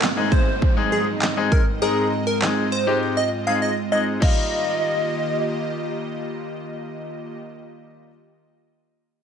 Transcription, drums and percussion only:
0.02 snare medium
0.02 clap loud
0.32 kick medium
0.62 kick medium
1.22 snare medium
1.22 clap loud
1.52 kick medium
2.42 snare medium
2.42 clap loud
4.22 kick medium
4.22 crash medium

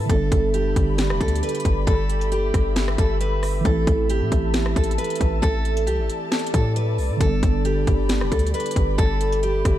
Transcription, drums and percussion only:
0.10 kick loud
0.10 closed hi-hat medium
0.32 kick loud
0.32 closed hi-hat medium
0.54 closed hi-hat medium
0.76 kick medium
0.76 closed hi-hat medium
0.98 snare loud
0.98 closed hi-hat medium
1.10 cross-stick loud
1.21 kick medium
1.21 closed hi-hat medium
1.28 closed hi-hat medium
1.36 closed hi-hat medium
1.43 closed hi-hat medium
1.49 closed hi-hat medium
1.55 closed hi-hat medium
1.60 closed hi-hat medium
1.65 kick medium
1.65 closed hi-hat medium
1.87 kick loud
1.87 closed hi-hat medium
2.10 closed hi-hat medium
2.21 closed hi-hat medium
2.32 closed hi-hat medium
2.54 kick loud
2.54 cross-stick medium
2.54 closed hi-hat medium
2.76 snare loud
2.76 closed hi-hat medium
2.88 cross-stick loud
2.98 kick medium
2.98 closed hi-hat medium
3.21 closed hi-hat medium
3.43 cross-stick medium
3.43 open hi-hat medium
3.65 kick loud
3.65 closed hi-hat medium
3.87 kick loud
3.87 closed hi-hat medium
4.10 closed hi-hat medium
4.32 kick loud
4.32 closed hi-hat medium
4.54 snare loud
4.54 closed hi-hat medium
4.66 cross-stick medium
4.76 kick medium
4.76 closed hi-hat medium
4.84 closed hi-hat medium
4.91 closed hi-hat medium
4.98 closed hi-hat medium
5.04 closed hi-hat medium
5.10 closed hi-hat medium
5.16 closed hi-hat medium
5.21 kick medium
5.21 closed hi-hat medium
5.43 kick loud
5.43 closed hi-hat medium
5.65 closed hi-hat medium
5.77 closed hi-hat medium
5.87 closed hi-hat medium
6.10 closed hi-hat medium
6.32 snare loud
6.32 closed hi-hat soft
6.39 closed hi-hat medium
6.47 closed hi-hat medium
6.54 kick medium
6.54 closed hi-hat medium
6.76 closed hi-hat medium
6.98 open hi-hat medium
7.21 kick loud
7.21 closed hi-hat medium
7.43 kick loud
7.43 closed hi-hat medium
7.65 closed hi-hat medium
7.87 kick medium
7.87 closed hi-hat medium
8.09 snare loud
8.09 closed hi-hat medium
8.21 cross-stick medium
8.32 kick medium
8.32 closed hi-hat medium
8.39 closed hi-hat medium
8.47 closed hi-hat medium
8.54 closed hi-hat medium
8.60 closed hi-hat medium
8.66 closed hi-hat medium
8.71 closed hi-hat medium
8.76 kick medium
8.76 closed hi-hat medium
8.98 kick loud
8.98 closed hi-hat medium
9.21 closed hi-hat medium
9.32 closed hi-hat medium
9.43 closed hi-hat medium
9.65 kick loud
9.65 cross-stick medium
9.65 closed hi-hat medium

